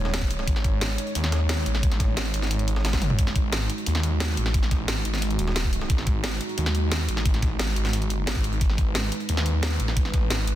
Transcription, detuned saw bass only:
0.00 0.46 D#1 loud
0.47 0.97 G#1 medium
1.15 1.65 D#2 loud
1.66 2.16 A1 loud
2.17 2.33 G#1 loud
2.34 2.93 G#1 loud
2.93 3.17 G1 loud
3.19 3.68 G#1 medium
3.87 4.36 D#2 medium
4.37 4.87 A1 loud
4.88 5.04 G#1 loud
5.05 5.38 G#1 loud
5.39 5.89 D#1 loud
5.90 6.39 G#1 loud
6.58 7.07 D#2 medium
7.09 7.58 A1 loud
7.59 7.75 G#1 loud
7.76 8.26 G#1 loud
8.27 8.60 G#1 loud
8.61 9.11 G#1 medium
9.29 9.78 D#2 medium
9.80 10.29 A1 loud
10.31 10.46 G#1 loud
10.47 10.55 G#1 loud

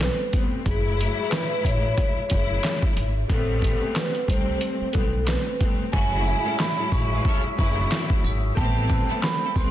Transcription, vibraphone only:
0.02 0.31 B4 medium
0.66 1.28 G#4 medium
1.29 1.60 B4 medium
1.65 2.27 C#5 medium
2.30 2.79 C#5 medium
3.31 3.92 A4 loud
3.96 4.25 B4 medium
4.28 4.90 C5 medium
4.93 5.23 A4 medium
5.27 5.57 B4 medium
5.92 6.55 G#5 medium
6.59 6.89 B5 medium
6.92 7.54 C#6 medium
7.58 8.08 C#6 medium
8.57 9.19 A5 medium
9.23 9.53 B5 medium

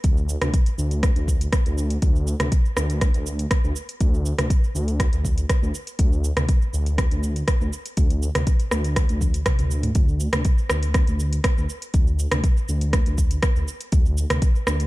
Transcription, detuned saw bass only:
0.04 0.36 D2 loud
0.42 0.50 D2 medium
0.78 1.11 D2 medium
1.16 1.48 D2 medium
1.65 1.97 D2 medium
2.02 2.35 D2 loud
2.40 2.49 D2 medium
2.77 3.09 D2 medium
3.14 3.46 D2 medium
3.64 3.73 D2 loud
4.01 4.33 D2 loud
4.38 4.47 D2 medium
4.75 5.07 D2 medium
5.12 5.44 D2 medium
5.62 5.71 D2 loud
5.99 6.31 D2 loud
6.36 6.45 D2 medium
6.73 7.06 D2 medium
7.11 7.43 D2 medium
7.61 7.69 D2 loud
7.97 8.30 D2 loud
8.35 8.44 D2 medium
8.72 9.04 D2 medium
9.09 9.41 D2 medium
9.59 9.91 D2 medium
9.95 10.28 D2 loud
10.33 10.42 D2 loud
10.70 11.02 D2 medium
11.08 11.40 D2 medium
11.57 11.66 D2 medium
11.94 12.26 D2 loud
12.32 12.41 D2 medium
12.69 13.01 D2 medium
13.06 13.38 D2 medium
13.56 13.65 D2 medium
13.92 14.25 D2 loud
14.30 14.39 D2 medium
14.67 14.87 D2 medium

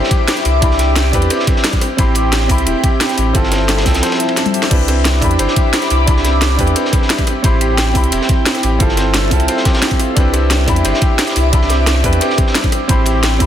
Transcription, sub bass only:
0.45 0.60 C2 medium
0.62 1.12 C2 loud
1.13 1.29 E2 loud
1.98 2.48 A1 loud
2.50 2.65 C2 loud
2.67 2.74 E1 loud
3.18 3.33 A1 medium
3.35 3.85 G1 loud
3.86 4.01 C2 loud
4.71 5.21 C2 loud
5.22 5.38 E2 loud
5.39 5.47 G1 medium
5.91 6.06 C2 medium
6.08 6.57 C2 loud
6.59 6.74 E2 loud
7.44 7.94 A1 loud
7.95 8.10 C2 loud
8.12 8.20 E1 medium
8.63 8.79 A1 medium
8.80 9.30 G1 loud
9.31 9.47 C2 loud
10.17 10.66 C2 loud
10.68 10.83 E2 loud
10.85 10.93 G1 medium
11.36 11.51 C2 medium
11.53 12.03 C2 loud
12.04 12.19 E2 loud
12.89 13.39 A1 loud
13.40 13.46 C2 loud

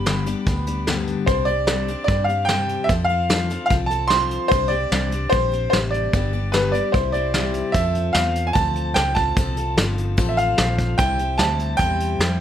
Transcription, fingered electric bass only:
0.00 0.33 G1 medium
0.46 1.14 D2 medium
1.27 1.95 C2 medium
2.08 2.76 G2 medium
2.89 3.56 F2 medium
3.71 4.38 C2 medium
4.51 4.85 C2 medium
4.92 5.26 C2 loud
5.33 5.67 A#1 medium
5.73 6.07 A1 medium
6.13 6.80 G1 medium
6.94 7.61 C2 medium
7.74 8.14 F2 medium
8.15 8.54 E2 loud
8.55 8.95 D2 medium
8.96 9.35 C#2 loud
9.36 9.76 C2 medium
9.77 10.16 G1 loud
10.18 10.57 A1 medium
10.58 10.97 A#1 loud
10.99 11.38 C2 medium
11.39 11.78 D2 loud
11.79 12.18 E2 medium
12.19 12.40 F2 loud

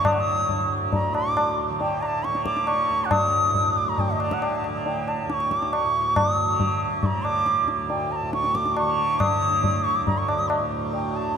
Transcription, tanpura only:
0.00 0.48 D2 medium
0.00 1.09 A2 medium
0.00 1.70 D3 medium
0.49 2.89 D2 medium
1.09 3.47 A2 medium
1.70 2.29 D3 medium
2.29 4.08 D3 medium
2.89 5.25 D2 medium
3.48 5.85 A2 medium
4.08 4.69 D3 medium
4.69 6.44 D3 medium
5.26 7.62 D2 medium
5.85 8.22 A2 medium
6.44 7.03 D3 medium
7.03 8.81 D3 medium
7.62 10.00 D2 medium
8.22 10.59 A2 medium
8.81 9.41 D3 medium
9.41 11.19 D3 medium
10.01 11.37 D2 medium
10.59 11.37 A2 medium
11.19 11.37 D3 medium

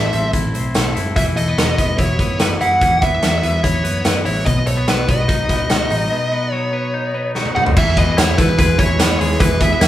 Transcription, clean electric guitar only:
0.00 1.16 A2 medium
0.00 0.74 A3 medium
0.00 0.12 C4 soft
0.00 0.33 E4 medium
0.13 0.54 C4 medium
0.33 0.95 E4 medium
0.55 1.21 C4 medium
0.75 1.20 A3 medium
0.96 1.61 E4 medium
1.16 2.81 E3 medium
1.36 1.48 A3 medium
1.48 1.77 B3 soft
1.58 2.41 F#3 medium
1.78 2.19 B3 medium
1.99 2.60 E4 medium
2.20 3.01 B3 medium
2.41 3.22 F#3 medium
2.61 3.62 E4 medium
2.82 4.47 E3 medium
3.02 3.43 B3 soft
3.22 4.04 F#3 medium
3.43 3.84 B3 medium
3.63 4.24 E4 medium
3.84 4.66 B3 medium
4.05 4.87 F#3 medium
4.25 4.50 E4 medium
4.46 6.11 B2 medium
4.66 4.77 A3 medium
4.77 5.07 B3 soft
4.87 5.68 F#3 medium
5.08 5.49 B3 medium
5.28 5.90 D#4 medium
5.49 6.31 B3 medium
5.69 6.51 F#3 medium
5.91 6.93 D#4 medium
6.12 7.76 B2 medium
6.32 6.72 B3 medium
6.52 7.34 F#3 medium
6.73 7.14 B3 medium
6.94 7.55 D#4 medium
7.14 7.96 B3 medium
7.36 7.81 F#3 medium
7.56 7.81 D#4 medium
7.77 9.39 E3 medium
7.97 8.37 B3 medium
8.17 8.78 E4 medium
8.38 8.49 A3 medium
8.49 8.98 B3 medium
8.58 9.20 G#3 medium
8.79 9.79 E4 medium
8.99 9.60 B3 medium
9.21 9.88 G#3 medium
9.40 9.88 E3 medium
9.61 9.88 B3 medium
9.81 9.88 E4 medium

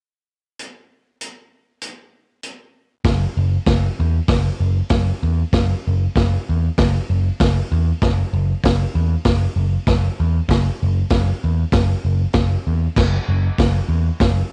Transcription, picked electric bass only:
3.05 3.24 F#1 loud
3.37 3.56 F#1 medium
3.67 3.87 F#1 medium
4.00 4.19 E2 medium
4.28 4.48 F#1 loud
4.60 4.80 F#1 medium
4.91 5.10 F#1 medium
5.23 5.42 E2 loud
5.53 5.72 F#1 loud
5.87 6.06 F#1 loud
6.16 6.35 F#1 medium
6.49 6.68 E2 medium
6.78 6.97 F#1 loud
7.10 7.29 F#1 medium
7.41 7.60 F#1 loud
7.72 7.91 E2 medium
8.03 8.22 F#1 loud
8.33 8.52 F#1 loud
8.64 8.83 F#1 medium
8.95 9.14 E2 medium
9.26 9.45 F#1 loud
9.56 9.75 F#1 medium
9.88 10.07 F#1 loud
10.20 10.39 E2 medium
10.48 10.68 F#1 loud
10.83 11.01 F#1 loud
11.11 11.30 F#1 medium
11.44 11.63 E2 medium
11.73 11.92 F#1 loud
12.05 12.24 F#1 medium
12.35 12.55 F#1 medium
12.67 12.86 E2 medium
12.97 13.17 F#1 medium
13.29 13.48 F#1 medium
13.59 13.79 F#1 medium
13.89 14.09 E2 medium
14.21 14.40 F#1 loud

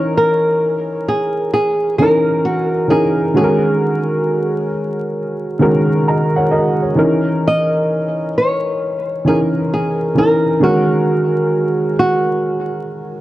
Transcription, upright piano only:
0.00 1.02 E3 medium
0.00 1.03 C#4 medium
0.00 1.04 D#4 medium
0.00 3.35 G#4 soft
0.00 1.04 A#4 loud
0.00 3.35 C#5 medium
1.99 2.68 E3 medium
1.99 2.69 C#4 medium
1.99 2.70 D#4 medium
1.99 2.70 A#4 medium
2.88 3.24 E3 medium
2.88 3.25 C#4 medium
2.88 3.25 D#4 medium
2.88 3.26 A#4 medium
3.34 4.65 D#3 medium
3.34 4.66 G#3 medium
3.34 4.66 C#4 medium
3.34 4.66 F#4 medium
3.34 3.44 A4 medium
3.44 4.70 A#4 medium
5.59 6.30 D#3 medium
5.59 6.31 G#3 medium
5.59 6.31 C#4 medium
5.59 6.32 F#4 medium
5.59 6.07 A#4 medium
6.08 6.35 D#5 medium
6.08 6.35 A#5 medium
6.36 6.52 C#5 medium
6.36 6.51 F#5 medium
6.51 6.80 A#4 medium
6.51 6.79 D#5 medium
6.82 7.25 G#4 soft
6.82 7.25 C#5 medium
6.95 8.28 E3 medium
6.95 8.28 C#4 medium
6.95 8.29 D#4 medium
6.95 8.29 A#4 medium
9.25 9.95 E3 medium
9.25 9.96 C#4 medium
9.25 9.96 D#4 medium
9.25 9.97 A#4 medium
10.15 10.51 E3 medium
10.15 10.52 C#4 medium
10.15 10.53 D#4 medium
10.15 10.53 A#4 medium
10.60 11.92 D#3 medium
10.60 11.92 G#3 medium
10.60 11.93 C#4 medium
10.60 11.93 F#4 medium
10.60 11.94 A#4 medium

